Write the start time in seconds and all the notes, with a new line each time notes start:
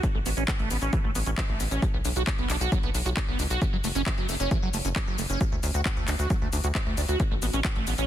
0.03 E3, kick, closed hi-hat, shaker
0.15 A1 A3
0.26 A1 B3, open hi-hat, shaker
0.37 A1 C#4, closed hi-hat, shaker
0.48 E3, kick, clap, closed hi-hat, shaker
0.59 A1 A3, closed hi-hat
0.70 A1 B3, open hi-hat, shaker
0.82 A1 C#4, closed hi-hat, shaker
0.93 E3, kick, closed hi-hat, shaker
1.04 A1 A3
1.15 A1 B3, open hi-hat, shaker
1.26 A1 C#4, closed hi-hat, shaker
1.38 E3, kick, clap, closed hi-hat, shaker
1.49 A1 A3
1.60 A1 B3, open hi-hat, shaker
1.71 A1 C#4, closed hi-hat, shaker
1.82 F#3, kick, closed hi-hat, shaker
1.94 B1 B3
2.05 B1 D4, open hi-hat, shaker
2.16 B1 F#4, closed hi-hat, shaker
2.27 F#3, kick, clap, closed hi-hat, shaker
2.38 B1 B3, closed hi-hat
2.49 B1 D4, clap, open hi-hat, shaker
2.61 B1 F#4, closed hi-hat, shaker
2.72 F#3, kick, closed hi-hat, shaker
2.83 B1 B3, closed hi-hat
2.94 B1 D4, open hi-hat, shaker
3.05 B1 F#4, closed hi-hat, shaker
3.17 F#3, kick, clap, closed hi-hat, shaker
3.28 B1 B3
3.39 C#2 D4, open hi-hat, shaker
3.50 B1 F#4, closed hi-hat, shaker
3.62 E3, kick, closed hi-hat, shaker
3.73 F#1 F#3
3.84 F#1 A3, open hi-hat, shaker
3.95 F#1 C#4, closed hi-hat, shaker
4.06 E3, kick, clap, closed hi-hat, shaker
4.18 F#1 F#3, closed hi-hat
4.29 F#1 A3, open hi-hat, shaker
4.40 F#1 C#4, closed hi-hat, shaker
4.51 E3, kick, closed hi-hat, shaker
4.62 F#1 F#3
4.74 F#1 A3, open hi-hat, shaker
4.85 F#1 C#4, closed hi-hat, shaker
4.96 E3, kick, clap, closed hi-hat, shaker
5.07 F#1 F#3
5.18 F#1 A3, open hi-hat, shaker
5.30 F#1 C#4, closed hi-hat, shaker
5.41 F#3, kick, closed hi-hat, shaker
5.52 D2 A3
5.63 D2 D4, open hi-hat, shaker
5.74 D2 F#4, closed hi-hat, shaker
5.85 F#3, kick, clap, closed hi-hat, shaker
5.97 D2 A3, closed hi-hat
6.08 D2 D4, clap, open hi-hat, shaker
6.19 D2 F#4, closed hi-hat, shaker
6.30 F#3, kick, closed hi-hat, shaker
6.42 D2 A3
6.53 D2 D4, open hi-hat, shaker
6.64 D2 F#4, closed hi-hat, shaker
6.75 F#3, kick, clap, closed hi-hat, shaker
6.86 D2 A3
6.97 D2 D4, open hi-hat, shaker
7.09 D2 F#4, closed hi-hat, shaker
7.20 E3, kick, closed hi-hat, shaker
7.31 A1 A3
7.42 A1 B3, open hi-hat, shaker
7.53 A1 C#4, closed hi-hat, shaker
7.65 E3, kick, clap, closed hi-hat, shaker
7.76 A1 A3, closed hi-hat
7.87 A1 B3, open hi-hat, shaker
7.98 A1 C#4, closed hi-hat, shaker